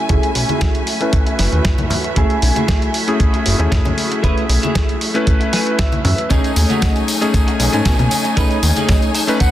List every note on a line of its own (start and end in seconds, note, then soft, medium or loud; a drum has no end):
0.00 9.51 A3 medium
0.00 6.26 F#4 medium
0.00 6.27 E5 medium
0.00 2.13 G#5 medium
0.09 0.18 F#1 loud
0.09 0.29 A3 loud
0.09 0.97 A3 medium
0.09 0.98 C#4 medium
0.09 0.29 E4 loud
0.09 0.30 G#4 loud
0.09 kick loud
0.09 closed hi-hat medium
0.23 closed hi-hat soft
0.35 0.44 B1 medium
0.35 open hi-hat loud
0.48 0.81 A3 medium
0.48 0.81 E4 medium
0.48 0.81 G#4 medium
0.48 closed hi-hat soft
0.48 high conga medium
0.61 kick loud
0.61 snare loud
0.61 closed hi-hat medium
0.75 closed hi-hat soft
0.87 open hi-hat medium
1.00 2.13 A3 medium
1.00 2.14 C#4 medium
1.00 2.14 E4 medium
1.00 2.14 B4 loud
1.00 closed hi-hat soft
1.13 kick loud
1.13 closed hi-hat medium
1.26 muted clean electric guitar stroke loud
1.26 closed hi-hat soft
1.39 1.48 F#1 medium
1.39 snare medium
1.39 open hi-hat loud
1.52 1.60 D#2 medium
1.52 closed hi-hat soft
1.64 1.74 F#2 medium
1.64 muted clean electric guitar stroke medium
1.64 kick loud
1.64 snare loud
1.64 closed hi-hat medium
1.78 1.86 F#2 loud
1.78 muted clean electric guitar stroke soft
1.78 closed hi-hat soft
1.78 high conga medium
1.90 open hi-hat medium
1.90 low conga medium
2.04 muted clean electric guitar stroke medium
2.04 closed hi-hat soft
2.16 2.25 F#1 medium
2.16 2.36 A3 loud
2.16 3.04 A3 medium
2.16 3.05 C#4 medium
2.16 2.36 E4 loud
2.16 3.05 E4 medium
2.16 2.37 G#4 loud
2.16 3.05 G#5 medium
2.16 kick loud
2.16 closed hi-hat medium
2.30 closed hi-hat soft
2.42 2.51 B1 medium
2.42 open hi-hat loud
2.55 2.88 A3 medium
2.55 2.88 E4 medium
2.55 2.88 G#4 medium
2.55 closed hi-hat soft
2.55 high conga medium
2.68 kick loud
2.68 snare loud
2.68 closed hi-hat medium
2.82 closed hi-hat soft
2.94 open hi-hat loud
3.07 3.56 A3 medium
3.07 3.56 C#4 medium
3.07 3.56 E4 medium
3.07 3.57 G#4 loud
3.07 closed hi-hat soft
3.19 muted clean electric guitar stroke soft
3.19 kick loud
3.19 closed hi-hat medium
3.33 muted clean electric guitar stroke loud
3.33 closed hi-hat soft
3.45 3.55 F#1 medium
3.45 muted clean electric guitar stroke soft
3.45 open hi-hat loud
3.59 3.67 D#2 medium
3.59 4.20 A3 medium
3.59 4.20 C#4 medium
3.59 4.21 E4 medium
3.59 4.21 G#4 medium
3.59 closed hi-hat soft
3.71 3.81 F#2 medium
3.71 muted clean electric guitar stroke medium
3.71 kick loud
3.71 snare loud
3.71 closed hi-hat medium
3.85 3.93 F#2 loud
3.85 muted clean electric guitar stroke soft
3.85 closed hi-hat soft
3.85 high conga medium
3.98 open hi-hat medium
4.11 muted clean electric guitar stroke medium
4.11 closed hi-hat soft
4.23 4.32 F#1 loud
4.23 5.11 A3 medium
4.23 4.43 A3 loud
4.23 5.11 C#4 medium
4.23 4.43 E4 loud
4.23 5.12 E4 medium
4.23 5.12 G#4 medium
4.23 4.44 B4 loud
4.23 kick loud
4.23 closed hi-hat medium
4.38 closed hi-hat soft
4.49 4.58 B1 medium
4.49 open hi-hat loud
4.62 4.95 A3 medium
4.62 4.95 E4 medium
4.62 4.95 G#4 medium
4.62 closed hi-hat soft
4.62 high conga medium
4.75 kick loud
4.75 snare loud
4.75 closed hi-hat medium
4.89 closed hi-hat soft
5.01 open hi-hat medium
5.14 6.27 A3 medium
5.14 6.27 C#4 medium
5.14 6.28 E4 medium
5.14 6.28 B4 loud
5.14 closed hi-hat soft
5.26 muted clean electric guitar stroke soft
5.26 kick loud
5.26 closed hi-hat medium
5.40 muted clean electric guitar stroke loud
5.40 closed hi-hat soft
5.52 5.77 G#5 medium
5.52 muted clean electric guitar stroke soft
5.52 snare medium
5.52 open hi-hat loud
5.67 closed hi-hat soft
5.78 6.03 E5 medium
5.78 muted clean electric guitar stroke medium
5.78 kick loud
5.78 snare loud
5.78 closed hi-hat medium
5.92 muted clean electric guitar stroke soft
5.92 closed hi-hat soft
5.92 high conga medium
6.04 6.13 F#2 loud
6.04 6.29 E5 medium
6.04 open hi-hat medium
6.04 low conga medium
6.17 muted clean electric guitar stroke medium
6.17 closed hi-hat soft
6.29 6.39 B1 loud
6.29 7.18 A3 medium
6.29 6.50 A3 loud
6.29 7.18 C#4 medium
6.29 6.50 C#4 loud
6.29 6.50 D#4 loud
6.29 7.19 D#4 medium
6.29 9.51 D#4 medium
6.29 6.50 G#4 loud
6.29 7.19 G#4 medium
6.29 9.51 C#5 medium
6.29 9.51 G#5 medium
6.29 kick loud
6.29 closed hi-hat medium
6.29 tambourine soft
6.44 closed hi-hat soft
6.44 tambourine soft
6.56 6.65 D#2 medium
6.56 open hi-hat loud
6.56 tambourine medium
6.69 7.02 A3 medium
6.69 7.02 C#4 medium
6.69 7.02 D#4 medium
6.69 7.02 F#4 medium
6.69 closed hi-hat soft
6.69 tambourine soft
6.69 high conga medium
6.82 kick loud
6.82 snare loud
6.82 closed hi-hat medium
6.82 tambourine medium
6.96 closed hi-hat soft
6.96 tambourine soft
7.08 open hi-hat medium
7.08 tambourine medium
7.21 7.70 A3 medium
7.21 7.70 C#4 medium
7.21 7.70 D#4 medium
7.21 7.70 G#4 loud
7.21 closed hi-hat soft
7.21 tambourine soft
7.33 muted clean electric guitar stroke soft
7.33 kick loud
7.33 closed hi-hat medium
7.33 tambourine soft
7.47 muted clean electric guitar stroke loud
7.47 closed hi-hat soft
7.47 tambourine soft
7.59 7.69 B1 medium
7.59 muted clean electric guitar stroke soft
7.59 open hi-hat loud
7.59 tambourine medium
7.72 7.81 G#2 medium
7.72 8.34 A3 medium
7.72 8.34 C#4 medium
7.72 8.34 D#4 medium
7.72 8.35 G#5 medium
7.72 closed hi-hat soft
7.72 tambourine soft
7.85 7.94 B2 medium
7.85 muted clean electric guitar stroke medium
7.85 kick loud
7.85 snare loud
7.85 closed hi-hat medium
7.85 tambourine medium
7.98 8.07 B2 loud
7.98 muted clean electric guitar stroke soft
7.98 closed hi-hat soft
7.98 tambourine soft
7.98 high conga medium
8.11 open hi-hat medium
8.11 tambourine medium
8.24 muted clean electric guitar stroke medium
8.24 closed hi-hat soft
8.24 tambourine soft
8.36 8.46 B1 medium
8.36 9.25 A3 medium
8.36 8.57 A3 loud
8.36 9.25 C#4 medium
8.36 8.57 C#4 loud
8.36 9.25 D#4 medium
8.36 8.57 D#4 medium
8.36 9.26 G#4 medium
8.36 8.57 B4 loud
8.36 kick loud
8.36 closed hi-hat medium
8.36 tambourine medium
8.51 closed hi-hat soft
8.51 tambourine soft
8.63 8.72 D#2 medium
8.63 open hi-hat loud
8.63 tambourine medium
8.76 9.08 A3 medium
8.76 9.09 C#4 medium
8.76 9.09 D#4 medium
8.76 9.09 G#4 medium
8.76 closed hi-hat soft
8.76 tambourine soft
8.76 high conga medium
8.89 kick loud
8.89 snare loud
8.89 closed hi-hat medium
8.89 tambourine soft
9.02 closed hi-hat soft
9.02 tambourine soft
9.14 9.39 A5 medium
9.14 open hi-hat medium
9.14 tambourine medium
9.27 9.51 A3 medium
9.27 9.51 C#4 medium
9.27 9.51 D#4 medium
9.27 9.51 B4 loud
9.27 closed hi-hat soft
9.27 tambourine soft
9.40 9.51 F#5 medium
9.40 muted clean electric guitar stroke soft
9.40 kick loud
9.40 closed hi-hat medium
9.40 tambourine soft